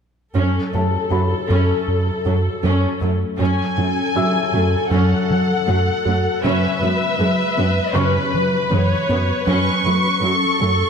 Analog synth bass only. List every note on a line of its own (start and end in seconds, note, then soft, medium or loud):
0.37 0.59 F#2 medium
0.75 0.97 F#2 soft
1.12 1.35 F#2 soft
1.50 1.73 F#2 medium
1.88 2.11 F#2 soft
2.26 2.49 F#2 soft
2.64 2.87 F#2 medium
3.02 3.25 F#2 medium
3.40 3.62 F#2 medium
3.77 4.00 F#3 soft
4.15 4.38 F#3 soft
4.54 4.76 F#2 soft
4.91 5.14 F#2 medium
5.30 5.53 F#3 soft
5.68 5.91 F#2 soft
6.06 6.28 F#2 soft
6.44 6.67 F#2 medium
6.82 7.05 F#3 soft
7.20 7.43 F#3 soft
7.58 7.81 F#2 soft
7.96 8.19 F#2 medium
8.34 8.57 F#3 medium
8.72 8.95 F#2 soft
9.10 9.32 F#2 soft
9.47 9.70 F#2 medium
9.85 10.08 F#3 soft
10.23 10.46 F#3 soft
10.61 10.84 F#2 medium